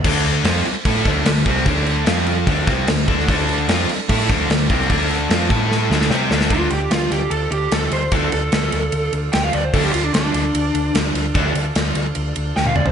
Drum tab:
CC |x-x-x-x-x-x-x-x-|x-x-x-x-x-x-x-x-|x-x-x-x-x-x-x-x-|x-x-x-x---------|
RD |----------------|----------------|----------------|----------------|
SD |----o-------o--o|----o-----o-o--o|----o-------o--o|----o---o-ooo-oo|
T1 |----------------|----------------|----------------|----------------|
T2 |----------------|----------------|----------------|----------------|
FT |----------------|----------------|----------------|----------------|
BD |o-------o-o---o-|o-------o-o---o-|o-------o-o---o-|o-----o---------|

CC |----------------|----------------|x---------------|----------------|
RD |x-x-x-x-x-x-x-x-|x-x-x-x-x-x-x-x-|--x-x-x-x-x-x-x-|x-x-x-x-x-x-----|
SD |----o-o-----o---|----o-------o---|----o-o-----o---|----o-------o---|
T1 |----------------|----------------|----------------|-------------o--|
T2 |----------------|----------------|----------------|--------------o-|
FT |----------------|----------------|----------------|---------------o|
BD |o---------------|o---------------|o---------------|o---------------|